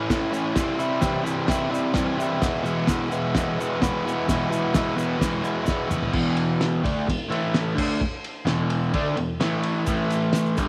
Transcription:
Already playing: E4
0.10 A2 E3 A3 C#4 E4, kick, snare, crash, shaker
0.31 A2 E3 A3 C#4 E4, shaker
0.54 C3 E3 G3 C4 E4, kick, snare, crash, shaker
0.78 C3 E3 G3 C4 E4, shaker
1.01 C3 E3 G3 C4 E4, kick, snare, crash, shaker
1.23 C3 E3 G3 C4 E4, shaker
1.47 C3 E3 G3 C4 E4, kick, snare, crash, shaker
1.69 C3 E3 G3 C4 E4
1.74 shaker
1.94 C3 E3 G3 C4 E4, kick, snare, crash, shaker
2.17 C3 E3 G3 C4 E4, shaker
2.40 E2 B2 E3 G#3 B3 E4, kick, snare, crash, shaker
2.63 E2 B2 E3 G#3 B3 E4, shaker
2.87 E2 B2 E3 G#3 B3 E4, kick, snare, crash, shaker
3.10 E2 B2 E3 G#3 B3 E4, shaker
3.35 E2 B2 E3 G#3 B3 E4, kick, snare, crash, shaker
3.59 E2 B2 E3 G#3 B3 E4, shaker
3.81 E2 B2 E3 G#3 B3 E4, kick, snare, crash, shaker
4.05 E2 B2 E3 G#3 B3 E4, shaker
4.27 E2 B2 E3 G#3 B3 E4, kick, snare, crash, shaker
4.48 E2 B2 E3 G#3 B3 E4
4.53 shaker
4.73 E2 B2 E3 G#3 B3 E4, kick, snare, crash, shaker
4.95 E2 B2 E3 G#3 B3 E4, shaker
5.18 E2 B2 E3 G#3 B3 E4, kick, snare, crash
5.22 shaker
5.42 E2 B2 E3 G#3 B3 E4, shaker
5.63 E2 B2 E3 G#3 B3 E4, shaker
5.68 kick, snare
5.88 E2 B2 E3 G#3 B3 E4, mid tom, shaker
6.03 floor tom
6.13 E2 B2 E3, kick, crash
6.37 ride
6.61 snare, ride
6.83 D3 A3 D4, kick, ride
7.06 E2 B2, kick, ride
7.28 A2 E3 A3, ride
7.54 snare, ride
7.75 D3 A3 D4, kick, crash
8.01 kick
8.24 ride
8.45 E2 B2 E3, snare, ride
8.70 ride
8.93 D3 A3 D4, kick, ride
9.16 E2 B2, ride
9.40 A2 E3 A3, snare, ride
9.63 ride
9.86 A2 E3 A3, kick, ride, shaker
10.10 ride, shaker
10.33 snare, ride, shaker
10.46 shaker
10.57 G2 D3 G3, kick, ride, shaker

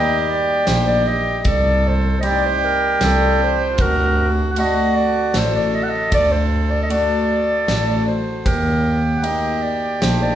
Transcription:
Already playing: G3 A#3 D#4 G4 D#5
0.20 D#5
0.29 D5
0.67 A#1 G3 A#3 D#4 C5, snare, ride
0.87 D5
1.07 D#5
1.38 D#5
1.45 C2 A4 D5, kick, ride
1.88 C5
2.20 G3 C4 D#4 G4 D#5, ride
2.27 D5
2.45 C5
2.65 A#4
3.01 C2 G3 C4 D4 A4, snare, ride
3.43 C5
3.71 F4
3.78 D2 F#4 A#4, kick, ride
4.50 F#5
4.56 D3 A3 F#4 D#5, ride
4.96 D5
5.33 A1 A3 D4 F#4 A4 C5, snare, ride
5.55 D5
5.75 D#5
5.83 F#5
5.89 D#5
6.12 D2 D5, kick, ride
6.31 C5
6.70 D5
6.83 D#5
6.88 A3 D4 F#4 D5, ride
7.67 A1 A3 D4 F#4, snare, ride
8.07 C5
8.45 D#2 G4 A#4, kick, ride
9.17 F#5
9.22 A#3 D#4 G4 D#5, ride
9.63 D5
10.01 A#1 A#3 D#4 A4 C5, snare, ride
10.22 D5

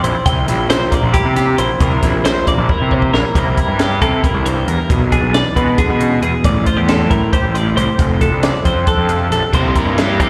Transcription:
Already playing: F2 C4 A4
0.04 A#1 E4 C5, closed hi-hat
0.26 C2 C3 G5, kick, closed hi-hat
0.48 A#1 E4, snare, closed hi-hat
0.70 C5, snare, closed hi-hat
0.91 A#3 D5, kick, closed hi-hat
1.03 A#1
1.13 E4 G4, kick, closed hi-hat
1.25 C3
1.36 A#3 G4, snare, closed hi-hat
1.58 A#1 E4 C5, closed hi-hat
1.80 C2 C3 A#4, kick, closed hi-hat
2.03 A#1 E4, kick, snare, closed hi-hat
2.25 C5, snare, closed hi-hat
2.47 A#3 D5, kick, closed hi-hat
2.58 A#1
2.69 E4 A#4, kick
2.82 C3
2.91 A#3 C5, kick
3.02 kick
3.13 A#1 E4 A#4, snare
3.35 C2 C3 G3 A#3 E4 A#4 C5, kick, closed hi-hat
3.57 E4 A#4, kick, closed hi-hat
3.68 G2
3.79 G3 G4, snare, closed hi-hat
4.02 C3 A#3 A4, kick, closed hi-hat
4.24 E4 A#4, kick, closed hi-hat
4.34 C2
4.45 G2 C5, closed hi-hat
4.68 E2 A#4, closed hi-hat
4.89 B1 B2, kick, closed hi-hat
5.12 D4 G#4, kick, closed hi-hat
5.23 B1
5.34 E3 D5, snare, closed hi-hat
5.56 B2 G#3 B4, kick, closed hi-hat
5.77 D3 G#4, kick, closed hi-hat
5.90 B2
5.99 C#3, closed hi-hat
6.22 E2 B2 G#4, closed hi-hat
6.43 A1 A2 D5, kick, closed hi-hat
6.66 F4 C5, kick, closed hi-hat
6.77 E2 G4
6.87 C4 A4, snare, closed hi-hat
7.10 A2 E4 A#4, kick, closed hi-hat
7.33 G4 C5, kick, closed hi-hat
7.44 A1
7.53 A2 D5, closed hi-hat
7.76 C2 G4 C5, closed hi-hat
7.98 F1 F2, kick, closed hi-hat
8.20 D4 A4, kick, closed hi-hat
8.31 C2
8.43 F3 D5, snare, closed hi-hat
8.65 F2 C4 C5, kick, closed hi-hat
8.87 D4 A4, kick, closed hi-hat
8.98 F2
9.08 C3, closed hi-hat
9.31 A#1 A4, snare, closed hi-hat
9.53 C2 C3 G3 A#3 E4 G4 C5, kick, closed hi-hat
9.76 A#3 E4 G4 A#4, kick, closed hi-hat
9.86 G2
9.98 C3 G3 A#3 E4 G4, snare, closed hi-hat
10.19 C3 A#3 E4 G4 A4, kick, closed hi-hat

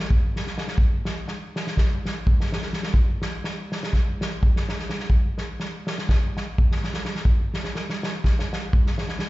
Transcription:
0.11 kick
0.36 snare
0.47 snare
0.58 snare
0.68 snare
0.78 kick
1.05 snare
1.28 snare
1.56 snare
1.67 snare
1.77 kick, snare
2.05 snare
2.27 kick
2.40 snare
2.52 snare
2.62 snare
2.73 snare
2.83 snare
2.94 kick
3.22 snare
3.44 snare
3.72 snare
3.83 snare
3.93 kick, snare
4.21 snare
4.43 kick
4.56 snare
4.69 snare
4.79 snare
4.90 snare
5.00 snare
5.10 kick
5.38 snare
5.60 snare
5.87 snare
5.98 snare
6.09 kick, snare
6.37 snare
6.58 kick
6.71 snare
6.84 snare
6.94 snare
7.05 snare
7.15 snare
7.25 kick
7.54 snare
7.64 snare
7.75 snare
7.90 snare
8.03 snare
8.24 kick, snare
8.39 snare
8.53 snare
8.73 kick
8.86 snare
8.98 snare
9.08 snare
9.19 snare

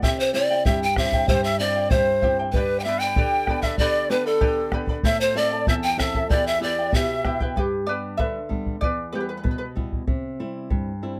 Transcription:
0.02 C3 E4 G4 C5 E5 G5, bombo low
0.20 C5
0.34 C4 E4 G4 C5 D5 E5 G5
0.50 E4 C5 G5
0.66 G2 E4 G4 C5 E5 G5, bombo low
0.83 G5
0.96 C4 E4 G4 C5 E5 G5, bombo rim, bombo low
1.13 E4 C5 G5, bombo low
1.28 G2 E4 G4 C5 E5 G5, bombo low
1.44 E5
1.59 C4 E4 G4 C5 D5 E5 G5
1.76 E4 C5 G5
1.90 G2 E4 G4 C5 E5 G5, bombo low
2.22 C4 E4 G4 C5 E5 G5, bombo low
2.39 E4 C5 G5
2.52 G2 G4 B4 G5, bombo low
2.56 B4 D5 B5
2.80 G5
2.84 B3 D4 G4 E5 G5
2.88 B4 D5 B5
3.00 D5 G5 B5
3.05 B4
3.16 D3 G4 B4 D5 G5 B5, bombo low
3.47 B3 D4 G4 B4 D5 G5 B5, bombo rim, bombo low
3.62 B4 D5 E5 B5, bombo low
3.78 D3 G4 B4 D5 G5 B5, bombo low
4.10 B3 D4 G4 B4 D5 G5 B5
4.26 A4 B4 D5 B5
4.41 D3 G4 B4 D5 G5 B5, bombo low
4.71 B3 D4 G4 B4 D5 G5 B5, bombo rim, bombo low
4.87 B4 D5 B5, bombo low
5.03 A2 E4 A4 C5 E5 A5, bombo low
5.21 C5
5.35 C4 E4 A4 D5 E5 A5
5.52 E4 A4 A5
5.67 E2 E4 A4 C5 E5 A5, bombo low
5.83 G5
5.97 C4 E4 A4 E5, bombo rim, bombo low
6.01 A5
6.15 E4 A4 A5, bombo low
6.29 E2 E4 G4 B4 D5 E5 G5, bombo low
6.47 E5
6.60 B3 E4 G4 B4 D5 E5 G5
6.79 E4 B4 G5
6.92 B2 E4 G4 B4 E5 G5, bombo low
7.24 B3 E4 G4 B4 E5 G5, bombo rim, bombo low
7.40 E4 B4 G5, bombo low
7.56 G2 G4 B4, bombo low
7.86 G3 B3 D4 B4 D5
8.17 D3 B4 E5, bombo low
8.49 G3 B3 D4, bombo low
8.66 bombo low
8.81 E2 B4 D5, bombo low
9.13 G3 B3 E4 G4 B4
9.20 B4
9.29 B4
9.37 B4
9.44 B2 B4, bombo low
9.51 B4
9.58 B4
9.76 G3 B3 E4, bombo low
9.92 bombo low
10.07 C3, bombo low
10.40 G3 C4 E4
10.70 G2, bombo low
11.03 G3 C4 E4

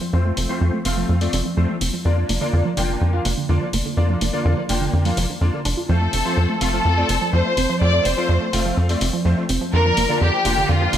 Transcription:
0.01 F3
0.13 F2 F3 A3 C4 F4 C5
0.25 A3
0.37 F1 C4, open hi-hat
0.49 F3 A3 C4 F4 C5
0.61 F2 F3
0.73 A3
0.85 F1 A3 C4 F4 F5, open hi-hat
0.97 F3
1.09 F2 F3
1.21 A3 C4 F4 D5, open hi-hat
1.33 F1 C4, open hi-hat
1.45 F3
1.57 F2 F3 A3 C4 F4 C5
1.69 A3
1.81 F1 C4, open hi-hat
1.93 F3
2.05 F2 D3 A#3 D4 F4 D5
2.17 F3
2.29 F1 A#3, open hi-hat
2.41 D3 A#3 D4 F4 D5
2.53 F2 D3
2.65 F3
2.77 F1 A#3 D4 F4 G5, open hi-hat
2.89 D3
3.01 F2 D3
3.13 F3 A#3 D4 F4 F5
3.25 F1 A#3, open hi-hat
3.37 D3
3.49 F2 D3 A#3 D4 F4 D5
3.61 F3
3.73 F1 A#3, open hi-hat
3.86 D3
3.97 F2 D3 A#3 D4 F4 D5
4.10 F3
4.21 F1 A#3, open hi-hat
4.33 D3 A#3 D4 F4 D5
4.45 F2 D3
4.58 F3
4.69 F1 A#3 D4 F4 G5, open hi-hat
4.81 D3
4.93 F2 D3
5.05 F3 A#3 D4 F4 F5, open hi-hat
5.17 F1 F3, open hi-hat
5.30 D3
5.41 F2 D3 A#3 D4 F4 D5
5.53 D3
5.65 F1 D4, open hi-hat
5.77 F4
5.89 F2 F3 A3 C4 F4 A4 C5
6.01 A3
6.13 F1 C4, open hi-hat
6.25 F3 A3 C4 F4 C5
6.37 F2 F3
6.49 A3
6.61 F1 A3 C4 F4 A4 F5, open hi-hat
6.74 F3
6.85 F2 F3
6.97 A3 C4 F4 D5
7.09 F1 C4, open hi-hat
7.21 F3
7.33 F2 F3 A3 C4 F4 C5
7.45 A3
7.57 F1 C4, open hi-hat
7.69 F3
7.81 F2 F3 A3 C4 F4 C5 D5
7.93 A3
8.05 F1 C4 C5, open hi-hat
8.17 F3 A3 C4 F4 C5
8.29 F2 F3
8.41 A3
8.53 F1 A3 C4 F4 F5, open hi-hat
8.65 F3
8.77 F2 F3
8.89 A3 C4 F4 D5, open hi-hat
9.01 F1 C4, open hi-hat
9.13 F3
9.25 F2 F3 A3 C4 F4 C5
9.37 A3
9.49 F1 C4, open hi-hat
9.61 F3
9.73 F2 D3 A#3 D4 F4 A#4 D5
9.85 F3
9.97 F1 A#3, open hi-hat
10.09 D3 A#3 D4 F4 D5
10.21 F2 D3 G4
10.33 F3
10.45 F1 A#3 D4 F4 G5, open hi-hat
10.57 D3
10.69 F2 D3 F4
10.81 F3 A#3 D4 F4 F5
10.93 F1 A#3, open hi-hat

